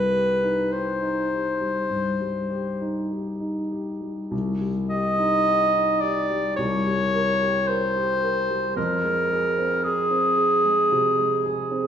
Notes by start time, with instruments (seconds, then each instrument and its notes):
Already playing: grand piano C2 G3, clarinet B4
0.12 grand piano G4
0.42 grand piano D#4
0.72 grand piano G4, clarinet C5
1.01 grand piano D#4
1.31 grand piano G4
1.60 grand piano G3
1.90 grand piano G2
2.21 grand piano G3
2.50 grand piano G4
2.81 grand piano D#4
3.10 grand piano G4
3.40 grand piano D#4
3.71 grand piano G4
4.01 grand piano G3
4.31 grand piano C2
4.61 grand piano G3
4.89 grand piano G4, clarinet D#5
5.18 grand piano D#4
5.46 grand piano G4
5.74 grand piano D#4
6.01 grand piano G4, clarinet D5
6.30 grand piano G3
6.56 grand piano C2, clarinet C#5
6.87 grand piano G3
7.14 grand piano A#4
7.42 grand piano G4
7.68 grand piano A#4, clarinet C5
7.96 grand piano G4
8.23 grand piano A#4
8.50 grand piano G3
8.76 grand piano F2, clarinet A#4
9.04 grand piano G#3
9.31 grand piano G#4
9.58 grand piano C4
9.84 clarinet G#4, grand piano G#4
10.10 grand piano C4
10.38 grand piano G#4
10.65 grand piano G#3
10.92 grand piano C3
11.18 grand piano G#3
11.46 grand piano G#4
11.71 grand piano C4